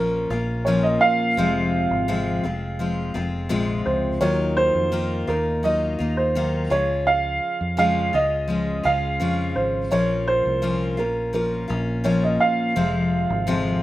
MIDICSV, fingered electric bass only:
0, 0, Header, 1, 2, 480
1, 0, Start_track
1, 0, Key_signature, -5, "minor"
1, 0, Tempo, 712589
1, 919, Time_signature, 4, 2, 24, 8
1, 9314, End_track
2, 0, Start_track
2, 0, Title_t, "Fingered electric bass"
2, 0, Program_c, 0, 33
2, 0, Note_on_c, 0, 34, 81
2, 175, Note_off_c, 0, 34, 0
2, 203, Note_on_c, 0, 34, 87
2, 654, Note_off_c, 0, 34, 0
2, 924, Note_on_c, 0, 29, 97
2, 1255, Note_off_c, 0, 29, 0
2, 1285, Note_on_c, 0, 32, 76
2, 1615, Note_off_c, 0, 32, 0
2, 1647, Note_on_c, 0, 29, 80
2, 2096, Note_off_c, 0, 29, 0
2, 2122, Note_on_c, 0, 29, 88
2, 2341, Note_off_c, 0, 29, 0
2, 2363, Note_on_c, 0, 34, 80
2, 2582, Note_off_c, 0, 34, 0
2, 2601, Note_on_c, 0, 37, 75
2, 2821, Note_off_c, 0, 37, 0
2, 2838, Note_on_c, 0, 39, 89
2, 3172, Note_off_c, 0, 39, 0
2, 3199, Note_on_c, 0, 41, 69
2, 3532, Note_off_c, 0, 41, 0
2, 3557, Note_on_c, 0, 39, 72
2, 4012, Note_off_c, 0, 39, 0
2, 4042, Note_on_c, 0, 39, 89
2, 4494, Note_off_c, 0, 39, 0
2, 4519, Note_on_c, 0, 37, 84
2, 4973, Note_off_c, 0, 37, 0
2, 5125, Note_on_c, 0, 41, 72
2, 5456, Note_off_c, 0, 41, 0
2, 5480, Note_on_c, 0, 37, 77
2, 5933, Note_off_c, 0, 37, 0
2, 5962, Note_on_c, 0, 37, 88
2, 6182, Note_off_c, 0, 37, 0
2, 6202, Note_on_c, 0, 41, 80
2, 6422, Note_off_c, 0, 41, 0
2, 6439, Note_on_c, 0, 32, 74
2, 6660, Note_off_c, 0, 32, 0
2, 6681, Note_on_c, 0, 34, 88
2, 7013, Note_off_c, 0, 34, 0
2, 7043, Note_on_c, 0, 36, 74
2, 7404, Note_off_c, 0, 36, 0
2, 7404, Note_on_c, 0, 34, 85
2, 7855, Note_off_c, 0, 34, 0
2, 7881, Note_on_c, 0, 34, 89
2, 8333, Note_off_c, 0, 34, 0
2, 8599, Note_on_c, 0, 29, 87
2, 8931, Note_off_c, 0, 29, 0
2, 8960, Note_on_c, 0, 32, 82
2, 9292, Note_off_c, 0, 32, 0
2, 9314, End_track
0, 0, End_of_file